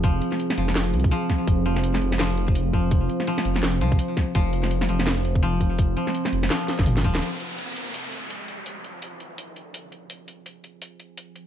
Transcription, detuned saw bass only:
X:1
M:4/4
L:1/16
Q:"Swing 16ths" 1/4=167
K:Fm
V:1 name="Detuned saw bass" clef=bass
F,,,2 z4 F,,,2 F,,,2 C,,2 z4 | F,,,6 F,,,8- F,,,2- | F,,,2 z4 F,,,2 F,,,2 C,,2 z4 | F,,,6 F,,,8- F,,,2- |
F,,,2 z4 F,,,2 z3 G,,,3 E,,,2 | z16 | z16 | z16 |]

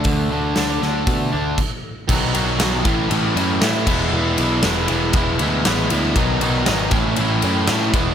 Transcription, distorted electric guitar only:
X:1
M:4/4
L:1/8
Q:1/4=118
K:A
V:1 name="Distorted electric guitar"
[D,A,D] D, D D, A, D z2 | [B,,^D,F,B,F] [B,,D,F,B,F] [B,,D,F,B,F] [A,,E,A,CE] [A,,E,A,CE] [A,,E,A,CE] [A,,E,A,CE] [E,G,B,E] | [E,G,B,E] [E,G,B,E] [E,G,B,E] [E,G,B,E] [E,G,B,E] [E,G,B,E] [E,G,B,E] [E,G,B,E] | [B,,^D,F,B,^D] [B,,D,F,B,D] [B,,D,F,B,D] [A,,E,A,CE] [A,,E,A,CE] [A,,E,A,CE] [A,,E,A,CE] [E,G,B,E] |]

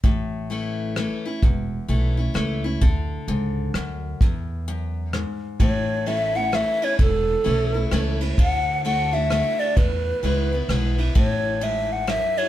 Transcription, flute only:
X:1
M:3/4
L:1/8
Q:"Swing" 1/4=130
K:A
V:1 name="Flute"
z6 | z6 | z6 | z6 |
c2 e f e c | A4- A z | f2 f e2 d | B4- B z |
c2 e f e c |]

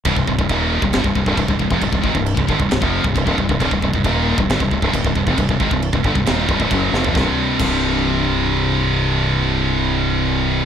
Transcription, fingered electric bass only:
X:1
M:4/4
L:1/16
Q:1/4=135
K:Cm
V:1 name="Fingered electric bass" clef=bass
C,,, C,,, C,,, C,,, E,,,3 C,,, G,,, C,,, C,,, C,,, C,,, C,,, C,,, F,,, | C,,, C,,, A,,, C,,,2 C,,, G,,, C,,, C,,, F,,,2 C,,, C,,, C,,, C,,, C,,, | C,,, C,,, C,,, C,,, E,,,3 C,,, G,,, C,,, C,,, C,,, C,,, C,,, C,,, F,,, | C,,, C,,, A,,, C,,,2 C,,, G,,, C,,, E,,,2 C,,, _D,,, ^F,,,2 =F,,,2 |
C,,, z3 C,,,12- | C,,,16 |]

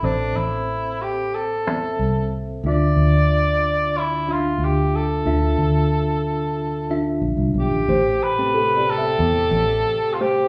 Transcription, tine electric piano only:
X:1
M:4/4
L:1/16
Q:1/4=92
K:Am
V:1 name="Tine electric piano"
[CAc]6 z4 [CAe]4- [CAe] z | [DFe]6 z4 [DFe]4- [DFe] z | [DFe]6 z4 [DFe]4- [DFe] z | [A,Gc]2 z [A,CG]6 z4 z [A,Gc]2 |]
V:2 name="Tine electric piano" clef=bass
[A,,,A,,]16 | [D,,D,]16 | [D,,D,]16 | [A,,,A,,]16 |]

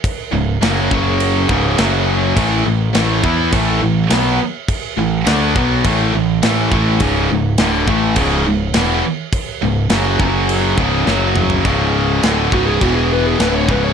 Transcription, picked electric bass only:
X:1
M:4/4
L:1/8
Q:1/4=103
K:C#phr
V:1 name="Picked electric bass" clef=bass
z C,,, F,,, F,,,2 C,,, F,,,2 | A,,, A,,, A,,, E,, A,,, A,,, B,,, z | z A,,, D,, B,,, A,,, A,,, A,,, A,,, | C,,, C,,, D,,, A,,, C,,, C,,, E,,, z |
z C,,, F,,, F,,,2 C,,, F,,,2 | [K:C#m] C,,,2 =D,,, C,,, E,,,2 D,,, C,,, |]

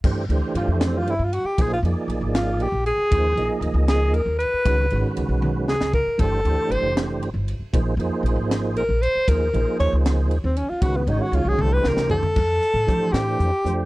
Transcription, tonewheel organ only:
X:1
M:6/8
L:1/16
Q:3/8=78
K:Gm
V:1 name="Tonewheel organ"
[=E,A,DGc]2 [E,A,DGc]6 z4 | [F,B,E_Ac]2 [F,B,EAd]6 z4 | [F,B,E_Ac]2 [F,B,EAe]6 z4 | [E,_A,_D_G_c]2 [E,A,DGc]6 z4 |
[=E,A,DGc]2 [E,A,DGc]6 z4 | [F,B,E_Ac]2 [F,B,EAc]6 z4 | [F,B,E_Ac]2 [F,B,EAc]6 z4 | [E,_A,_D_G_c]2 [E,A,DG_d]4 [=E,=A,=D=G=c]4- [E,A,DGc] z |
[K:F] z4 [E,A,DGc]4- [E,A,DGc] z [F,A,DGc]2 |]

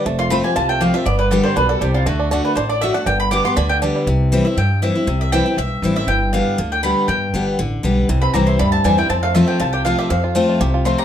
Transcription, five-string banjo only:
X:1
M:4/4
L:1/8
Q:1/4=239
K:C
V:1 name="Five-string banjo"
A, F C G F A, G A, | B, G, G G, D G, D G, | A, D D D D D A, D | D,2 G B, D D, D G, |
z8 | z8 | z8 | z8 |
E, C G E G, C G, E | C A, F F, F G F G | C F A, F G F A, G |]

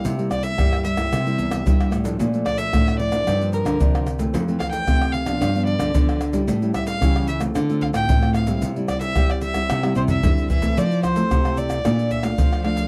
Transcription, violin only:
X:1
M:4/4
L:1/16
Q:1/4=112
K:F
V:1 name="Violin"
z2 d e3 e8 z2 | z2 d e3 d4 B4 z2 | z2 f g3 f4 d4 z2 | z2 e f3 e2 z2 f g3 f2 |
z2 d e2 d e4 c e3 e2 | d2 c4 d4 e f3 f2 |]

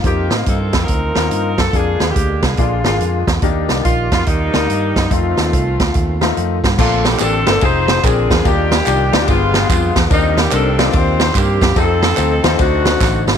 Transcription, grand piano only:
X:1
M:4/4
L:1/8
Q:"Swing" 1/4=144
K:Bb
V:1 name="Grand piano"
[B,CEF]2 z3 [B,CEF]2 z | [B,DF_A]2 z2 [B,DFA] [B,DFA]2 z | [B,DEG]2 z3 [B,EBd]2 z | [A,CEF]2 z3 [A,CEF]2 z |
[B,CDA] z [B,CDG] [B,CDA] [CEF_A]2 [CDAB]2 | [DEFG] z [DEFG] [DEFG] [=B,FG_A]3 z | [CDEB] z [CDEB] [E,CDF]2 z3 | [CEFA] z [CEFA] [CEFc] [DE^Fc]3 z |]
V:2 name="Grand piano" clef=bass
z8 | z4 B,,3 z | E,3 z4 z | z8 |
B,,3 z3 B,,2 | E,3 z G,,3 z | E,3 z4 z | z4 D,3 z |]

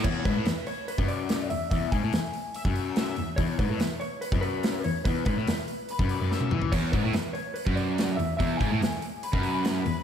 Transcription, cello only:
X:1
M:4/4
L:1/16
Q:1/4=144
K:Emix
V:1 name="Cello" clef=bass
E,,2 G,, A,, E,,2 z3 F,,4- F,, E,,2 | E,,2 G,, A,, E,,2 z3 F,,4- F,, E,,2 | E,,2 G,, A,, E,,2 z3 F,,4- F,, E,,2 | E,,2 G,, A,, E,,2 z3 F,,2 F,,3 E,,2 |
E,,2 G,, A,, E,,2 z3 F,,4- F,, E,,2 | E,,2 G,, A,, E,,2 z3 F,,4- F,, E,,2 |]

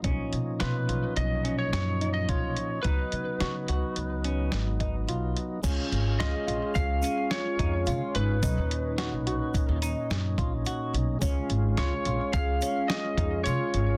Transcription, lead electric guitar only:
X:1
M:5/4
L:1/16
Q:1/4=107
K:C#mix
V:1 name="Lead electric guitar"
z4 B4 d3 c c3 d c4 | B16 z4 | z4 d4 e4 c6 B2- | B8- B2 z8 z2 |
z4 c4 e4 d4 c4 |]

